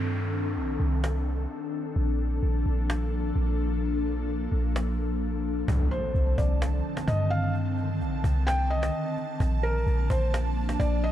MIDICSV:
0, 0, Header, 1, 7, 480
1, 0, Start_track
1, 0, Tempo, 465116
1, 102, Time_signature, 4, 2, 24, 8
1, 11475, End_track
2, 0, Start_track
2, 0, Title_t, "Felt piano"
2, 0, Program_c, 0, 0
2, 6101, Note_on_c, 0, 72, 78
2, 6553, Note_off_c, 0, 72, 0
2, 6586, Note_on_c, 0, 74, 68
2, 6812, Note_off_c, 0, 74, 0
2, 7308, Note_on_c, 0, 75, 83
2, 7534, Note_off_c, 0, 75, 0
2, 7538, Note_on_c, 0, 77, 94
2, 7768, Note_off_c, 0, 77, 0
2, 8738, Note_on_c, 0, 79, 102
2, 8968, Note_off_c, 0, 79, 0
2, 8982, Note_on_c, 0, 75, 84
2, 9661, Note_off_c, 0, 75, 0
2, 9941, Note_on_c, 0, 70, 92
2, 10393, Note_off_c, 0, 70, 0
2, 10423, Note_on_c, 0, 72, 84
2, 10651, Note_off_c, 0, 72, 0
2, 11141, Note_on_c, 0, 74, 95
2, 11370, Note_off_c, 0, 74, 0
2, 11390, Note_on_c, 0, 75, 91
2, 11475, Note_off_c, 0, 75, 0
2, 11475, End_track
3, 0, Start_track
3, 0, Title_t, "Ambient pad"
3, 0, Program_c, 1, 92
3, 0, Note_on_c, 1, 51, 77
3, 0, Note_on_c, 1, 60, 73
3, 0, Note_on_c, 1, 62, 72
3, 0, Note_on_c, 1, 69, 88
3, 1984, Note_off_c, 1, 51, 0
3, 1984, Note_off_c, 1, 60, 0
3, 1984, Note_off_c, 1, 69, 0
3, 2021, Note_on_c, 1, 53, 82
3, 2021, Note_on_c, 1, 69, 90
3, 2022, Note_on_c, 1, 58, 71
3, 5820, Note_off_c, 1, 62, 0
3, 5824, Note_off_c, 1, 53, 0
3, 5824, Note_off_c, 1, 58, 0
3, 5824, Note_off_c, 1, 69, 0
3, 5862, Note_on_c, 1, 50, 74
3, 5862, Note_on_c, 1, 51, 80
3, 5862, Note_on_c, 1, 60, 78
3, 5862, Note_on_c, 1, 81, 90
3, 9664, Note_off_c, 1, 50, 0
3, 9664, Note_off_c, 1, 51, 0
3, 9664, Note_off_c, 1, 60, 0
3, 9702, Note_on_c, 1, 58, 72
3, 9702, Note_on_c, 1, 62, 78
3, 9703, Note_on_c, 1, 53, 82
3, 11475, Note_off_c, 1, 53, 0
3, 11475, Note_off_c, 1, 58, 0
3, 11475, Note_off_c, 1, 62, 0
3, 11475, Note_off_c, 1, 81, 0
3, 11475, End_track
4, 0, Start_track
4, 0, Title_t, "808-style bass"
4, 0, Program_c, 2, 38
4, 0, Note_on_c, 2, 43, 102
4, 583, Note_on_c, 2, 34, 97
4, 598, Note_off_c, 2, 43, 0
4, 811, Note_off_c, 2, 34, 0
4, 822, Note_on_c, 2, 36, 95
4, 1514, Note_off_c, 2, 36, 0
4, 2024, Note_on_c, 2, 34, 110
4, 2484, Note_off_c, 2, 34, 0
4, 2504, Note_on_c, 2, 34, 107
4, 2734, Note_off_c, 2, 34, 0
4, 2743, Note_on_c, 2, 34, 99
4, 3434, Note_off_c, 2, 34, 0
4, 3463, Note_on_c, 2, 34, 107
4, 4622, Note_off_c, 2, 34, 0
4, 4664, Note_on_c, 2, 34, 95
4, 5822, Note_off_c, 2, 34, 0
4, 5864, Note_on_c, 2, 36, 110
4, 6094, Note_off_c, 2, 36, 0
4, 6343, Note_on_c, 2, 36, 111
4, 6573, Note_off_c, 2, 36, 0
4, 6584, Note_on_c, 2, 36, 103
4, 7044, Note_off_c, 2, 36, 0
4, 7302, Note_on_c, 2, 43, 106
4, 8263, Note_on_c, 2, 34, 106
4, 8279, Note_off_c, 2, 43, 0
4, 8491, Note_off_c, 2, 34, 0
4, 8504, Note_on_c, 2, 36, 104
4, 9195, Note_off_c, 2, 36, 0
4, 9703, Note_on_c, 2, 34, 115
4, 10164, Note_off_c, 2, 34, 0
4, 10182, Note_on_c, 2, 34, 110
4, 10413, Note_off_c, 2, 34, 0
4, 10423, Note_on_c, 2, 34, 101
4, 11114, Note_off_c, 2, 34, 0
4, 11142, Note_on_c, 2, 34, 111
4, 11475, Note_off_c, 2, 34, 0
4, 11475, End_track
5, 0, Start_track
5, 0, Title_t, "Downlifter"
5, 0, Program_c, 3, 103
5, 0, Note_on_c, 3, 60, 81
5, 2022, Note_off_c, 3, 60, 0
5, 11475, End_track
6, 0, Start_track
6, 0, Title_t, "Impact"
6, 0, Program_c, 4, 103
6, 5864, Note_on_c, 4, 60, 88
6, 7783, Note_off_c, 4, 60, 0
6, 11475, End_track
7, 0, Start_track
7, 0, Title_t, "Cajon"
7, 1071, Note_on_c, 9, 38, 102
7, 1174, Note_off_c, 9, 38, 0
7, 2990, Note_on_c, 9, 38, 104
7, 3093, Note_off_c, 9, 38, 0
7, 4911, Note_on_c, 9, 38, 100
7, 5014, Note_off_c, 9, 38, 0
7, 5864, Note_on_c, 9, 36, 116
7, 5967, Note_off_c, 9, 36, 0
7, 6106, Note_on_c, 9, 38, 42
7, 6209, Note_off_c, 9, 38, 0
7, 6346, Note_on_c, 9, 38, 43
7, 6449, Note_off_c, 9, 38, 0
7, 6585, Note_on_c, 9, 36, 90
7, 6688, Note_off_c, 9, 36, 0
7, 6831, Note_on_c, 9, 38, 110
7, 6934, Note_off_c, 9, 38, 0
7, 7191, Note_on_c, 9, 38, 98
7, 7294, Note_off_c, 9, 38, 0
7, 7302, Note_on_c, 9, 36, 99
7, 7405, Note_off_c, 9, 36, 0
7, 7540, Note_on_c, 9, 38, 37
7, 7643, Note_off_c, 9, 38, 0
7, 7783, Note_on_c, 9, 38, 42
7, 7887, Note_off_c, 9, 38, 0
7, 8024, Note_on_c, 9, 38, 42
7, 8127, Note_off_c, 9, 38, 0
7, 8265, Note_on_c, 9, 38, 43
7, 8368, Note_off_c, 9, 38, 0
7, 8504, Note_on_c, 9, 36, 94
7, 8607, Note_off_c, 9, 36, 0
7, 8751, Note_on_c, 9, 38, 113
7, 8854, Note_off_c, 9, 38, 0
7, 9111, Note_on_c, 9, 38, 98
7, 9214, Note_off_c, 9, 38, 0
7, 9223, Note_on_c, 9, 38, 49
7, 9326, Note_off_c, 9, 38, 0
7, 9460, Note_on_c, 9, 38, 38
7, 9563, Note_off_c, 9, 38, 0
7, 9703, Note_on_c, 9, 36, 110
7, 9806, Note_off_c, 9, 36, 0
7, 9944, Note_on_c, 9, 38, 41
7, 10048, Note_off_c, 9, 38, 0
7, 10185, Note_on_c, 9, 38, 43
7, 10288, Note_off_c, 9, 38, 0
7, 10424, Note_on_c, 9, 36, 92
7, 10527, Note_off_c, 9, 36, 0
7, 10671, Note_on_c, 9, 38, 110
7, 10774, Note_off_c, 9, 38, 0
7, 11031, Note_on_c, 9, 38, 100
7, 11135, Note_off_c, 9, 38, 0
7, 11142, Note_on_c, 9, 36, 99
7, 11246, Note_off_c, 9, 36, 0
7, 11380, Note_on_c, 9, 38, 37
7, 11475, Note_off_c, 9, 38, 0
7, 11475, End_track
0, 0, End_of_file